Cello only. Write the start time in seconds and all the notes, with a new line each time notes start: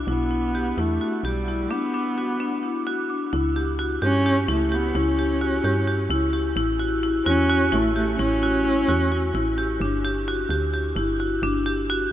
0.09 B3
0.79 A3
1.25 G3
1.72 B3
4.04 C#4
4.51 A3
4.74 B3
4.96 C#4
7.26 C#4
7.73 A3
7.96 A3
8.19 C#4